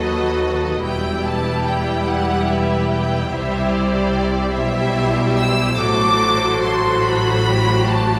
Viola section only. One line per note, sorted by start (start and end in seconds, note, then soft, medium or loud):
0.00 0.82 F#3 soft
0.00 0.82 F#4 soft
0.86 3.32 G3 soft
0.86 3.29 E4 soft
3.33 4.52 G3 soft
3.33 4.52 E4 soft
4.55 5.77 G3 medium
4.55 5.77 E4 medium
5.80 8.19 F#3 medium
5.80 8.19 F#4 medium